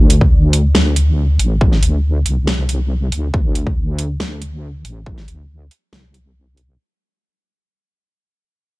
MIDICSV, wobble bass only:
0, 0, Header, 1, 2, 480
1, 0, Start_track
1, 0, Tempo, 431655
1, 1790, Time_signature, 4, 2, 24, 8
1, 9778, End_track
2, 0, Start_track
2, 0, Title_t, "Wobble bass"
2, 0, Program_c, 0, 39
2, 0, Note_on_c, 0, 38, 89
2, 812, Note_off_c, 0, 38, 0
2, 831, Note_on_c, 0, 38, 95
2, 1533, Note_off_c, 0, 38, 0
2, 1551, Note_on_c, 0, 33, 94
2, 2012, Note_off_c, 0, 33, 0
2, 2031, Note_on_c, 0, 38, 95
2, 2493, Note_off_c, 0, 38, 0
2, 2511, Note_on_c, 0, 36, 95
2, 3452, Note_off_c, 0, 36, 0
2, 3470, Note_on_c, 0, 38, 98
2, 3692, Note_off_c, 0, 38, 0
2, 3711, Note_on_c, 0, 38, 87
2, 4652, Note_off_c, 0, 38, 0
2, 4670, Note_on_c, 0, 38, 91
2, 5372, Note_off_c, 0, 38, 0
2, 5390, Note_on_c, 0, 33, 101
2, 5852, Note_off_c, 0, 33, 0
2, 5871, Note_on_c, 0, 38, 90
2, 6332, Note_off_c, 0, 38, 0
2, 6591, Note_on_c, 0, 36, 97
2, 7532, Note_off_c, 0, 36, 0
2, 9778, End_track
0, 0, End_of_file